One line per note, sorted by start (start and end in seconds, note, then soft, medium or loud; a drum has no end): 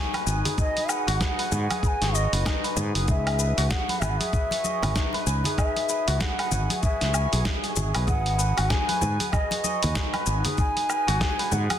0.00 2.45 D#4 medium
0.00 1.07 F#4 loud
0.00 0.45 G#4 medium
0.00 0.13 B4 medium
0.00 2.01 C#5 medium
0.00 0.75 D#5 loud
0.00 0.26 G#5 loud
0.00 0.43 G#5 loud
0.14 0.88 B4 medium
0.14 open hi-hat soft
0.14 muted conga soft
0.14 low woodblock medium
0.26 0.41 G#1 loud
0.26 1.51 G#5 loud
0.26 shaker medium
0.45 0.57 G#4 medium
0.45 open hi-hat medium
0.45 low conga medium
0.45 shaker soft
0.58 1.20 G#4 medium
0.58 0.91 D#5 loud
0.58 kick loud
0.58 shaker soft
0.76 2.14 D#5 medium
0.76 open hi-hat soft
0.76 muted conga soft
0.89 1.38 B4 medium
0.89 1.83 F#5 loud
0.89 low woodblock medium
0.89 shaker medium
1.07 1.18 G#1 medium
1.07 3.57 F#4 loud
1.07 open hi-hat medium
1.07 shaker soft
1.20 1.69 G#4 medium
1.20 kick loud
1.20 snare loud
1.20 shaker soft
1.39 2.32 B4 loud
1.39 open hi-hat soft
1.52 1.66 G#2 loud
1.52 2.76 G#5 loud
1.52 muted conga soft
1.52 low conga medium
1.52 shaker medium
1.70 1.82 G#4 medium
1.70 open hi-hat medium
1.70 high conga medium
1.70 low woodblock medium
1.70 shaker soft
1.83 2.94 G#4 medium
1.83 1.89 B5 medium
1.83 kick loud
1.83 shaker soft
1.88 2.17 G#5 loud
2.01 2.25 G#1 medium
2.01 4.51 C#5 medium
2.01 snare soft
2.01 open hi-hat soft
2.01 shaker soft
2.14 3.26 D#5 loud
2.14 2.77 D#5 medium
2.14 shaker medium
2.33 2.43 F#1 loud
2.33 2.63 B4 medium
2.33 open hi-hat medium
2.33 shaker soft
2.45 4.95 D#4 medium
2.45 kick loud
2.45 snare loud
2.45 low woodblock medium
2.45 shaker soft
2.64 3.39 B4 medium
2.64 open hi-hat soft
2.64 shaker soft
2.76 2.91 G#2 loud
2.76 4.01 G#5 loud
2.76 low conga loud
2.76 shaker medium
2.95 3.05 F#1 medium
2.95 3.07 G#4 medium
2.95 open hi-hat medium
2.95 shaker soft
3.07 3.52 C#2 loud
3.07 3.70 G#4 medium
3.07 3.71 E5 loud
3.07 kick loud
3.07 shaker soft
3.26 4.64 D#5 medium
3.26 open hi-hat soft
3.26 low woodblock medium
3.39 3.89 B4 medium
3.39 shaker medium
3.57 3.68 C#2 medium
3.57 6.07 F#4 loud
3.57 open hi-hat medium
3.57 shaker soft
3.70 4.20 G#4 medium
3.70 4.02 F#5 loud
3.70 kick loud
3.70 snare medium
3.70 shaker soft
3.89 4.82 B4 loud
3.89 open hi-hat soft
3.89 high conga medium
4.00 4.16 G#1 loud
4.00 4.11 E5 loud
4.00 5.26 G#5 loud
4.00 muted conga soft
4.00 low conga medium
4.00 low woodblock medium
4.00 shaker medium
4.10 4.19 F#5 medium
4.17 4.32 G#4 medium
4.17 5.26 E5 loud
4.17 open hi-hat medium
4.17 high conga medium
4.17 shaker soft
4.33 5.45 G#4 medium
4.33 kick loud
4.33 shaker soft
4.51 7.01 C#5 medium
4.51 open hi-hat soft
4.51 muted conga medium
4.51 shaker soft
4.64 5.76 D#5 loud
4.64 high conga medium
4.64 shaker medium
4.82 4.93 G#1 medium
4.82 5.13 B4 medium
4.82 open hi-hat medium
4.82 low conga medium
4.82 low woodblock medium
4.82 shaker soft
4.96 8.56 D#4 medium
4.96 kick loud
4.96 snare loud
4.96 shaker soft
5.13 5.89 B4 loud
5.13 open hi-hat soft
5.13 muted conga soft
5.26 5.41 C#2 loud
5.26 6.51 G#5 loud
5.26 shaker medium
5.44 5.57 G#4 medium
5.44 open hi-hat soft
5.44 low conga medium
5.44 shaker soft
5.57 6.20 G#4 medium
5.57 6.22 E5 loud
5.57 kick loud
5.57 low woodblock medium
5.57 shaker soft
5.76 7.45 D#5 medium
5.76 open hi-hat soft
5.76 muted conga soft
5.89 6.38 B4 medium
5.89 shaker medium
6.07 6.18 C#2 medium
6.07 8.56 F#4 loud
6.07 open hi-hat medium
6.07 shaker soft
6.20 6.70 G#4 medium
6.20 6.83 F#5 loud
6.20 kick loud
6.20 snare medium
6.20 shaker soft
6.39 7.94 B4 loud
6.39 open hi-hat soft
6.39 low woodblock medium
6.51 6.66 G#1 medium
6.51 7.13 G#5 loud
6.51 muted conga soft
6.51 low conga medium
6.51 shaker medium
6.70 6.82 G#4 medium
6.70 open hi-hat medium
6.70 high conga medium
6.70 shaker soft
6.83 7.32 G#4 medium
6.83 7.42 E5 loud
6.83 kick loud
6.83 shaker soft
7.01 7.25 C#2 medium
7.01 9.50 C#5 medium
7.01 snare soft
7.01 open hi-hat soft
7.01 shaker soft
7.14 9.01 G#5 loud
7.14 low woodblock medium
7.14 shaker medium
7.32 7.43 B1 loud
7.32 7.63 G#4 medium
7.32 open hi-hat medium
7.32 shaker soft
7.45 8.25 D#5 medium
7.45 kick loud
7.45 snare medium
7.45 shaker soft
7.64 7.76 G#4 medium
7.64 open hi-hat soft
7.64 shaker soft
7.76 7.91 G#1 medium
7.76 8.07 G#4 medium
7.76 low conga loud
7.76 shaker medium
7.94 8.06 B1 medium
7.94 8.38 B4 medium
7.94 open hi-hat medium
7.94 low woodblock medium
7.94 shaker soft
8.07 8.52 G#1 medium
8.07 8.69 G#4 medium
8.07 8.71 F#5 loud
8.07 kick loud
8.07 shaker soft
8.26 9.63 D#5 medium
8.26 open hi-hat soft
8.38 8.88 B4 medium
8.38 shaker medium
8.57 8.68 G#1 medium
8.57 11.07 F#4 loud
8.57 open hi-hat medium
8.57 low woodblock medium
8.57 shaker soft
8.69 9.19 G#4 medium
8.69 9.34 G#5 loud
8.69 kick loud
8.69 snare medium
8.69 shaker soft
8.88 9.82 B4 loud
8.88 open hi-hat soft
8.88 high conga medium
9.01 9.17 G#2 loud
9.01 10.26 G#5 loud
9.01 muted conga soft
9.01 low conga medium
9.01 shaker medium
9.19 9.32 G#4 medium
9.19 open hi-hat medium
9.19 high conga medium
9.19 shaker soft
9.32 10.44 G#4 medium
9.32 10.26 D#5 loud
9.32 kick loud
9.32 low woodblock medium
9.32 shaker soft
9.51 11.79 C#5 medium
9.51 open hi-hat soft
9.51 muted conga medium
9.51 shaker soft
9.64 10.76 D#5 loud
9.64 high conga medium
9.64 shaker medium
9.82 9.93 D#2 medium
9.82 10.13 B4 medium
9.82 open hi-hat medium
9.82 low conga medium
9.82 shaker soft
9.95 11.79 D#4 medium
9.95 kick loud
9.95 snare medium
9.95 shaker soft
10.13 10.89 B4 loud
10.13 open hi-hat soft
10.13 muted conga soft
10.13 low woodblock medium
10.26 10.42 G#1 medium
10.26 11.51 G#5 loud
10.26 shaker medium
10.45 10.57 G#4 medium
10.45 open hi-hat medium
10.45 low conga medium
10.45 shaker soft
10.58 11.20 G#4 medium
10.58 11.54 G#5 loud
10.58 kick loud
10.58 shaker soft
10.76 11.79 D#5 medium
10.76 open hi-hat soft
10.76 muted conga soft
10.89 11.38 B4 medium
10.89 low woodblock medium
10.89 shaker medium
11.07 11.18 G#1 medium
11.07 11.79 F#4 loud
11.07 open hi-hat medium
11.07 shaker soft
11.20 11.69 G#4 medium
11.20 kick loud
11.20 snare medium
11.20 shaker soft
11.39 11.79 B4 loud
11.39 open hi-hat soft
11.51 11.67 G#2 medium
11.51 11.79 F#5 loud
11.51 11.79 G#5 loud
11.51 muted conga soft
11.51 low conga medium
11.51 shaker medium
11.70 11.79 G#4 medium
11.70 open hi-hat medium
11.70 high conga medium
11.70 low woodblock medium
11.70 shaker soft